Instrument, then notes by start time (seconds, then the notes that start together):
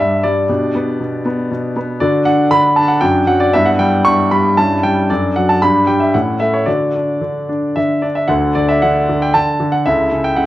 grand piano
Already playing: G3 D4 G4
0.00 G2 E5
0.23 G3 D5
0.49 B2 D4 G4
0.75 B3
1.00 B2
1.26 B3
1.51 B2
1.77 B3
2.00 D3 D4 F#4 D5
2.25 D4 F#5
2.51 D3 B5
2.76 D4 A5
2.88 F#5
3.01 F#2 D4 F#4 G5
3.27 F#3 F#5
3.40 D5
3.54 G2 B3 E4 E5
3.66 F#5
3.79 G3 G5
4.05 G2 C#6
4.31 G3 B5
4.57 G2 C#4 E4 A5
4.83 G3 G5
5.10 F#2 D4 A4 D5
5.36 F#3 F#5
5.49 A5
5.62 G2 D4 G4 B5
5.87 G3 G5
6.00 E5
6.14 A2 C#4 E4 F#5
6.40 A3 E5
6.54 C#5
6.66 D3 D4 F#4 D5
6.96 D4
7.22 D3
7.49 D4
7.76 D3 E5
8.02 D4 D5
8.15 E5
8.28 D2 D3 D4 A4 F#5
8.55 D3 D5
8.68 E5
8.82 D3 F#5
9.09 D3
9.22 G5
9.34 D3 A5
9.60 D3
9.72 F#5
9.86 C#2 C#3 E4 A4 E5
10.12 C#3
10.24 G5
10.36 C#3 F#5